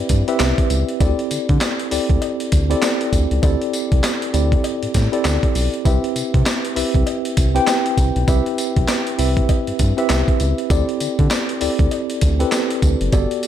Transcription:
Already playing: tine electric piano C4 E4 G4 B4 D5 E5
0.09 analog synth bass G2, kick, closed hi-hat, tambourine
0.27 tine electric piano C4 E4 G4 B4 E5, closed hi-hat
0.40 analog synth bass C2, snare, clap, closed hi-hat, tambourine, cowbell
0.58 kick, closed hi-hat
0.70 analog synth bass C#2, closed hi-hat, tambourine
0.89 closed hi-hat
1.00 analog synth bass D2, tine electric piano C4 E4 F#4 A4 D5, kick, closed hi-hat, tambourine, cowbell
1.07 tine electric piano G4
1.19 closed hi-hat
1.31 analog synth bass D3, closed hi-hat, tambourine
1.49 analog synth bass D3, kick, closed hi-hat
1.61 snare, clap, closed hi-hat, tambourine, cowbell
1.79 closed hi-hat
1.91 analog synth bass D2, tine electric piano C4 E4 G4 A4 D5, open hi-hat, tambourine
2.10 analog synth bass D2, kick, closed hi-hat
2.22 closed hi-hat, cowbell
2.40 closed hi-hat
2.52 analog synth bass D2, kick, closed hi-hat, tambourine
2.70 tine electric piano C4 E4 G4 A4 D5, closed hi-hat
2.82 snare, clap, closed hi-hat, tambourine, cowbell
3.01 closed hi-hat
3.13 analog synth bass D2, kick, closed hi-hat, tambourine
3.31 analog synth bass C#2, closed hi-hat
3.42 analog synth bass D2, tine electric piano C4 E4 G4 A4 D5, kick, closed hi-hat, tambourine, cowbell
3.62 closed hi-hat
3.73 closed hi-hat, tambourine
3.92 analog synth bass C2, kick, closed hi-hat
4.04 snare, clap, closed hi-hat, tambourine, cowbell
4.22 closed hi-hat
4.33 analog synth bass D2, tine electric piano C4 E4 G4 A4 D5, closed hi-hat, tambourine
4.52 kick, closed hi-hat
4.64 closed hi-hat, cowbell
4.83 analog synth bass A2, closed hi-hat
4.94 analog synth bass A2, kick, snare, closed hi-hat, tambourine
5.12 tine electric piano C4 E4 G4 A4 D5, closed hi-hat
5.25 analog synth bass D2, snare, clap, closed hi-hat, tambourine, cowbell
5.43 kick, closed hi-hat
5.55 analog synth bass B1, open hi-hat, tambourine
5.74 closed hi-hat
5.85 analog synth bass C2, tine electric piano C4 E4 G4 B4 E5, kick, closed hi-hat, tambourine, cowbell
6.04 closed hi-hat
6.16 analog synth bass C3, closed hi-hat, tambourine
6.34 analog synth bass C3, kick, closed hi-hat
6.46 snare, clap, closed hi-hat, tambourine, cowbell
6.65 closed hi-hat
6.75 analog synth bass C2, tine electric piano C4 E4 G4 B4 E5, open hi-hat, tambourine
6.95 analog synth bass C2, kick, closed hi-hat
7.07 closed hi-hat, cowbell
7.25 closed hi-hat
7.37 analog synth bass C2, kick, closed hi-hat, tambourine
7.55 tine electric piano C4 E4 G4 B4 G5, closed hi-hat
7.67 snare, clap, closed hi-hat, tambourine, cowbell
7.86 closed hi-hat
7.97 analog synth bass C2, kick, closed hi-hat, tambourine
8.16 analog synth bass B1, closed hi-hat
8.27 analog synth bass C2, tine electric piano C4 E4 G4 B4 E5, kick, closed hi-hat, tambourine, cowbell
8.46 closed hi-hat
8.58 closed hi-hat, tambourine
8.76 analog synth bass B1, kick, closed hi-hat
8.88 snare, clap, closed hi-hat, tambourine, cowbell
9.07 closed hi-hat
9.18 analog synth bass C2, tine electric piano C4 E4 G4 B4 E5, open hi-hat, tambourine
9.37 kick, closed hi-hat
9.49 kick, closed hi-hat, cowbell
9.67 analog synth bass G2, closed hi-hat
9.79 analog synth bass G2, kick, closed hi-hat, tambourine
9.97 tine electric piano C4 E4 G4 B4 E5, closed hi-hat
10.09 analog synth bass C2, snare, clap, closed hi-hat, tambourine, cowbell
10.28 kick, closed hi-hat
10.40 analog synth bass C#2, closed hi-hat, tambourine
10.58 closed hi-hat
10.70 analog synth bass D2, tine electric piano C4 E4 G4 A4 D5, kick, closed hi-hat, tambourine, cowbell
10.89 closed hi-hat
11.00 analog synth bass D3, closed hi-hat, tambourine
11.19 analog synth bass D3, kick, closed hi-hat
11.31 snare, clap, closed hi-hat, tambourine, cowbell
11.49 closed hi-hat
11.61 analog synth bass D2, tine electric piano C4 E4 G4 A4 D5, open hi-hat, tambourine
11.79 analog synth bass D2, kick, closed hi-hat
11.91 closed hi-hat, cowbell
12.10 closed hi-hat
12.21 analog synth bass D2, kick, closed hi-hat, tambourine
12.40 tine electric piano C4 E4 G4 A4 B4, closed hi-hat
12.52 snare, clap, closed hi-hat, tambourine, cowbell
12.71 closed hi-hat
12.82 analog synth bass D2, kick, closed hi-hat, tambourine
13.01 analog synth bass F#1, closed hi-hat
13.12 analog synth bass G1, tine electric piano B3 F#4 G4 A4 D5, kick, closed hi-hat, tambourine, cowbell
13.31 closed hi-hat
13.43 closed hi-hat, tambourine

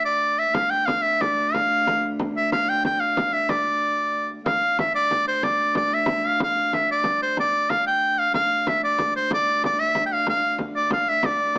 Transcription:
Already playing: viola da gamba D2
0.05 shawm D5
0.39 shawm E5
0.53 viola da gamba D2, shawm F5, frame drum
0.70 shawm G5, frame drum
0.86 shawm F5, frame drum
1.02 shawm E5
1.21 shawm D5, frame drum
1.38 frame drum
1.54 shawm F5, frame drum
1.71 frame drum
1.87 frame drum
2.19 frame drum
2.36 shawm E5, frame drum
2.52 shawm F5, frame drum
2.68 shawm G5, frame drum
2.85 shawm G5, frame drum
3.00 shawm F5
3.17 frame drum
3.33 shawm E5, frame drum
3.49 shawm D5, frame drum
3.66 frame drum
4.31 frame drum
4.46 viola da gamba D2, shawm F5, frame drum
4.79 shawm E5, frame drum
4.95 shawm D5, frame drum
5.11 frame drum
5.28 shawm C5
5.43 shawm D5, frame drum
5.75 shawm D5, frame drum
5.91 shawm E5, frame drum
6.06 frame drum
6.23 frame drum
6.27 shawm F5
6.40 shawm F5, frame drum
6.73 shawm E5, frame drum
6.89 shawm D5, frame drum
7.04 frame drum
7.21 shawm C5, frame drum
7.37 shawm D5, frame drum
7.70 shawm F5, frame drum
7.87 shawm G5
8.19 shawm F5
8.34 viola da gamba D2, shawm F5, frame drum
8.67 shawm E5, frame drum
8.83 shawm D5, frame drum
8.98 frame drum
9.16 shawm C5, frame drum
9.31 shawm D5, frame drum
9.64 shawm D5, frame drum
9.79 shawm E5, frame drum
9.95 frame drum
10.06 shawm G5
10.12 shawm F5, frame drum
10.26 shawm F5, frame drum
10.58 frame drum
10.74 shawm D5, frame drum
10.90 shawm F5, frame drum
11.07 shawm E5, frame drum
11.23 shawm D5, frame drum

